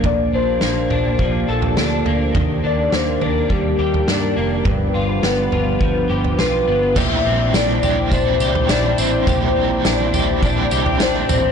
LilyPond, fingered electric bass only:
\new Staff \with { instrumentName = "Fingered electric bass" } { \clef bass \time 4/4 \key g \minor \tempo 4 = 104 bes,,8 bes,,8 bes,,8 bes,,8 bes,,8 bes,,8 d,8 d,8 | ees,8 ees,8 ees,8 ees,8 ees,8 ees,8 g,8 f,,8 | g,,8 g,,8 g,,8 g,,8 g,,8 g,,8 b,,8 g,,8 | \key c \mixolydian bes,,8 bes,,8 bes,,8 bes,,8 bes,,8 c,8 bes,,8 a,,8 |
bes,,8 bes,,8 bes,,8 bes,,8 bes,,8 c,8 bes,,8 a,,8 | }